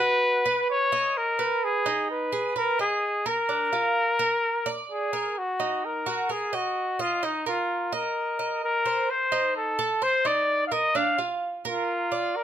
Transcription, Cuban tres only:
0.00 0.44 F#4 medium
0.46 0.91 B4 medium
0.92 1.38 D#5 medium
1.39 1.84 B4 medium
1.86 2.31 D#4 medium
2.32 2.55 G#4 medium
2.56 2.78 B4 medium
2.79 3.25 D#5 medium
3.26 3.48 A#4 medium
3.49 3.72 D4 medium
3.73 4.18 F4 medium
4.19 4.65 A#4 medium
4.66 5.11 D5 medium
5.13 5.35 A#4 medium
5.60 6.05 D#4 medium
6.06 6.29 F#4 medium
6.29 6.52 A#4 medium
6.53 6.98 D#5 medium
6.99 7.22 D#5 medium
7.23 7.45 D#4 medium
7.46 7.91 A#4 medium
7.92 8.38 D#5 medium
8.39 8.84 D#5 medium
8.86 9.31 C5 medium
9.32 9.77 D#4 medium
9.79 10.01 A4 medium
10.02 10.24 C5 medium
10.25 10.70 D#4 medium
10.72 10.94 A#4 medium
10.95 11.18 D4 medium
11.18 11.64 F4 medium
11.65 12.10 A#4 medium
12.12 12.44 D5 medium

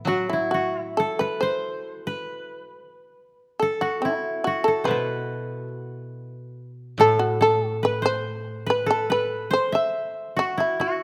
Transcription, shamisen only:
0.07 0.28 F#4 medium
0.29 0.51 E4 medium
0.51 0.94 F#4 medium
0.97 1.18 A4 medium
1.19 1.40 B4 medium
1.41 2.25 C5 medium
3.60 3.80 A4 medium
3.81 4.01 F#4 medium
4.02 4.42 E4 medium
4.44 4.65 F#4 medium
4.64 4.85 A4 medium
4.85 5.68 B4 medium
7.01 7.19 A4 medium
7.19 7.39 F#4 medium
7.42 7.67 A4 medium
7.67 7.80 F#4 medium
7.85 8.03 B4 medium
8.06 8.43 C5 medium
8.70 8.88 B4 medium
8.91 9.09 A4 medium
9.12 9.49 B4 medium
9.53 9.72 C5 medium
9.75 10.13 E5 medium
10.39 10.57 F#4 medium
10.60 10.79 E4 medium
10.81 11.03 F#4 medium

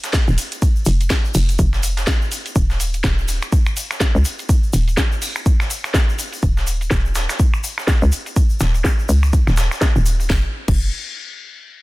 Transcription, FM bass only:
0.28 0.36 D#1 loud
0.86 1.09 F1 loud
1.35 1.57 F1 loud
1.59 2.06 F1 loud
2.56 3.02 D#1 loud
3.04 3.40 D#1 medium
4.15 4.23 C#2 loud
4.73 4.96 D#1 medium
6.43 6.90 D#1 loud
6.91 7.27 D#1 medium
8.02 8.11 C#2 loud
8.61 8.83 D#1 loud
9.09 9.45 C#2 medium
9.47 9.69 D#1 loud
9.96 10.28 D#1 loud
10.30 10.45 F1 medium
10.68 10.91 F1 loud

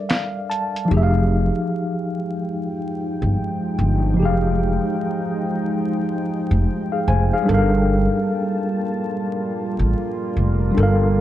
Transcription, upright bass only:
0.91 1.48 F1 loud
3.22 3.35 G1 medium
3.79 4.19 G1 medium
4.19 4.76 F1 loud
6.51 6.64 F1 medium
7.08 7.29 F1 medium
7.49 8.06 G1 loud
9.79 9.93 A1 medium
10.37 10.71 F1 medium
10.77 11.21 G1 loud

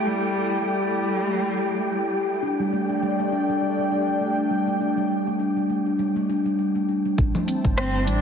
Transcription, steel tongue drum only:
2.43 2.59 D4 medium
2.60 2.71 G3 medium
2.73 2.89 A3 medium
2.89 3.01 D4 medium
3.02 3.18 G3 medium
3.19 3.27 A3 medium
3.32 3.47 D4 medium
3.49 3.61 G3 medium
3.62 3.78 G3 medium
3.79 3.90 A3 medium
3.92 4.07 D4 medium
4.08 4.20 G3 medium
4.21 4.37 A3 medium
4.38 4.49 D4 medium
4.51 4.67 G3 medium
4.68 4.75 A3 medium
4.80 4.96 D4 medium
4.97 5.09 G3 medium
5.10 5.26 G3 medium
5.27 5.39 A3 medium
5.40 5.56 D4 medium
5.57 5.68 G3 medium
5.70 5.86 A3 medium
5.86 5.98 D4 medium
5.99 6.15 G3 medium
6.16 6.23 A3 medium
6.29 6.44 D4 medium
6.46 6.58 G3 medium
6.59 6.75 G3 medium
6.75 6.87 A3 medium
6.89 7.05 D4 medium
7.05 7.17 G3 medium
7.18 7.34 G3 medium
7.35 7.47 A3 medium
7.48 7.64 C4 medium
7.65 7.76 G3 medium
7.77 7.93 A3 medium
7.94 8.06 C4 medium
8.07 8.21 G3 loud

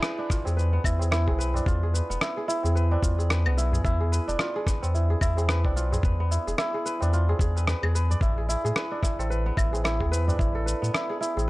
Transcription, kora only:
0.00 0.18 D4 medium
0.00 0.36 E4 loud
0.00 0.45 G#4 medium
0.00 0.56 B4 loud
0.18 1.55 D4 medium
0.30 0.91 F4 medium
0.46 1.00 G#4 medium
0.57 1.38 B4 medium
0.73 2.09 B3 medium
0.85 1.11 E4 medium
1.01 1.27 G#4 medium
1.11 1.73 E4 loud
1.27 1.83 G#4 medium
1.39 1.93 B4 loud
1.55 2.91 D4 medium
1.67 2.27 F4 medium
1.83 2.37 G#4 medium
1.94 2.75 B4 medium
2.10 3.46 B3 medium
2.21 2.48 E4 medium
2.37 2.64 G#4 medium
2.48 3.09 E4 loud
2.65 3.18 G#4 medium
2.75 3.30 B4 loud
2.92 4.27 D4 medium
3.03 3.63 F4 medium
3.19 3.73 G#4 medium
3.30 4.12 B4 medium
3.46 4.82 B3 medium
3.57 3.84 E4 medium
3.73 4.00 G#4 medium
3.84 4.45 E4 loud
4.00 4.55 G#4 medium
4.12 4.66 B4 loud
4.28 5.64 D4 medium
4.39 5.00 F4 medium
4.56 5.10 G#4 medium
4.67 5.49 B4 medium
4.82 6.20 B3 medium
4.94 5.21 E4 medium
5.10 5.37 G#4 medium
5.22 5.82 E4 loud
5.38 5.92 G#4 medium
5.49 6.04 B4 loud
5.65 7.02 D4 medium
5.76 6.37 F4 medium
5.92 6.47 G#4 medium
6.04 6.85 B4 medium
6.20 8.06 B3 medium
6.31 6.58 E4 medium
6.47 6.74 G#4 medium
6.58 7.19 E4 loud
6.74 7.29 G#4 medium
6.86 7.56 B4 loud
7.02 8.70 D4 medium
7.13 8.28 F4 medium
7.29 7.40 G#4 medium
7.41 7.83 G#4 loud
7.57 7.67 B4 medium
7.67 7.94 B4 medium
7.83 8.37 G#4 loud
7.95 8.75 B4 loud
8.11 9.21 D5 medium
8.22 8.48 E4 medium
8.38 8.64 G#4 medium
8.49 9.02 E4 loud
8.65 9.25 G#4 medium
8.76 9.30 B4 loud
8.91 10.27 D4 medium
9.03 9.57 E4 medium
9.19 9.79 A4 medium
9.30 10.11 B4 medium
9.46 10.81 B3 medium
9.57 9.84 E4 medium
9.73 10.00 G#4 medium
9.84 10.38 E4 loud
10.01 10.61 G#4 medium
10.12 10.66 B4 loud
10.28 11.50 D4 medium
10.39 10.93 E4 medium
10.55 11.16 A4 medium
10.66 11.47 B4 medium
10.82 11.50 B3 medium
10.94 11.20 E4 medium
11.10 11.36 G#4 medium
11.21 11.50 E4 medium
11.37 11.50 G#4 medium

